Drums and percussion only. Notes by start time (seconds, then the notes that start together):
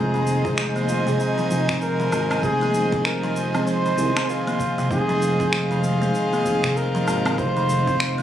0.15 shaker
0.27 shaker
0.45 kick, shaker
0.58 finger snap, shaker
0.76 shaker
0.89 shaker
1.07 shaker
1.20 shaker
1.38 shaker
1.51 shaker
1.69 finger snap, kick, shaker
1.82 shaker
2.00 shaker
2.12 low woodblock, shaker
2.31 low woodblock, shaker
2.43 kick, shaker
2.62 shaker
2.74 shaker
2.93 kick, shaker
3.05 finger snap, shaker
3.24 shaker
3.36 shaker
3.55 low woodblock, shaker
3.67 shaker
3.86 shaker
3.98 shaker
4.17 finger snap, low woodblock, shaker
4.29 shaker
4.48 shaker
4.60 kick, shaker
4.79 shaker
4.91 kick, shaker
5.09 shaker
5.22 shaker
5.40 kick, shaker
5.53 finger snap, shaker
5.71 shaker
5.84 shaker
6.02 shaker
6.15 shaker
6.33 shaker
6.46 shaker
6.64 finger snap, kick, shaker
6.77 shaker
6.95 shaker
7.08 low woodblock, shaker
7.26 low woodblock, shaker
7.38 kick, shaker
7.57 shaker
7.69 shaker
7.88 kick, shaker
8.00 finger snap, shaker
8.19 shaker